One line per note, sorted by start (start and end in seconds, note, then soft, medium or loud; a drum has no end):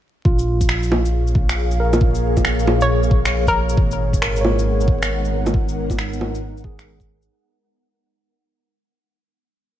0.24 3.76 A#1 medium
0.24 3.78 A#2 medium
0.24 1.49 F4 medium
0.24 kick loud
0.32 3.78 A#3 medium
0.39 shaker soft
0.50 5.09 C#5 medium
0.56 4.42 G#4 medium
0.56 3.78 F5 medium
0.61 kick medium
0.61 shaker medium
0.69 finger snap loud
0.83 shaker soft
0.92 low bongo medium
1.06 shaker medium
1.27 shaker soft
1.35 kick loud
1.49 finger snap loud
1.49 shaker medium
1.71 shaker soft
1.80 3.03 A#4 medium
1.93 low bongo medium
1.93 shaker medium
2.01 kick loud
2.15 shaker soft
2.37 kick medium
2.37 low bongo soft
2.37 shaker medium
2.45 finger snap loud
2.59 shaker soft
2.67 low bongo medium
2.81 3.05 C#5 medium
2.81 shaker medium
3.03 shaker soft
3.11 3.96 C#5 medium
3.11 kick loud
3.25 finger snap loud
3.25 shaker medium
3.47 3.78 A#4 medium
3.47 kick medium
3.47 shaker soft
3.69 shaker medium
3.77 7.29 G#1 medium
3.77 7.31 G#3 medium
3.77 kick loud
3.91 shaker soft
3.96 7.31 D#4 medium
3.96 7.31 F#5 medium
4.08 7.31 B3 medium
4.13 7.31 A#4 medium
4.13 kick medium
4.13 shaker medium
4.22 5.45 A#4 medium
4.22 finger snap loud
4.36 shaker soft
4.41 5.59 C#5 medium
4.41 low bongo medium
4.59 shaker medium
4.80 shaker soft
4.88 kick loud
5.03 finger snap loud
5.03 shaker medium
5.25 shaker soft
5.46 low bongo medium
5.46 shaker medium
5.54 kick loud
5.69 shaker soft
5.90 kick medium
5.90 low bongo soft
5.90 shaker medium
5.99 finger snap loud
6.13 shaker soft
6.21 low bongo medium
6.35 shaker medium
6.57 shaker soft
6.64 7.49 G#4 medium
6.64 kick loud
6.79 finger snap loud
6.79 shaker medium
7.00 kick medium
7.00 shaker soft
7.22 shaker medium